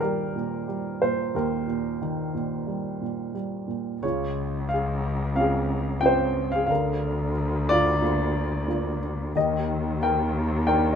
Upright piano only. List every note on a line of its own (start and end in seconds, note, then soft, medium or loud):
0.00 1.32 D#2 medium
0.00 0.36 A#2 soft
0.00 0.66 D#3 soft
0.00 0.66 G3 soft
0.00 0.03 G4 medium
0.00 1.32 G4 soft
0.00 1.04 A#4 medium
0.00 1.02 C5 medium
0.00 4.05 D5 medium
0.36 1.01 A#2 soft
0.68 1.98 G3 soft
1.02 1.66 A#2 soft
1.02 1.33 C5 medium
1.35 3.99 D#2 medium
1.35 3.33 G4 soft
1.35 3.33 A#4 medium
1.68 2.33 A#2 soft
2.02 3.32 D#3 soft
2.35 3.00 A#2 soft
2.67 3.33 G3 soft
3.02 3.66 A#2 soft
3.35 4.01 G3 soft
3.68 4.01 A#2 soft
4.02 6.66 C#3 medium
4.02 4.67 F4 soft
4.02 4.72 C#5 medium
4.69 5.32 F5 medium
4.73 5.34 G#4 soft
5.36 6.00 C4 soft
5.36 6.01 C#4 soft
5.36 6.01 F4 soft
5.36 5.99 F5 medium
5.41 6.01 G#4 medium
6.01 6.67 C4 soft
6.01 6.67 C#4 soft
6.01 6.67 F4 soft
6.01 6.48 G5 medium
6.06 6.51 C5 medium
6.52 6.70 G#4 medium
6.52 6.65 F5 medium
6.67 9.31 D3 soft
6.67 7.31 F5 medium
6.71 7.33 A#4 medium
7.69 8.00 F4 medium
7.69 8.98 D5 loud
8.02 8.66 A#3 soft
8.02 8.67 D4 soft
8.02 8.67 F4 soft
8.68 9.33 A#3 soft
8.68 9.33 D4 soft
8.68 9.33 F4 soft
9.36 10.95 D#3 medium
9.36 9.99 G4 medium
9.36 10.05 D#5 medium
10.03 10.65 A#4 medium
10.03 10.65 G5 medium
10.67 10.95 D4 soft
10.67 10.95 D#4 soft
10.67 10.93 A#4 medium
10.67 10.95 G5 medium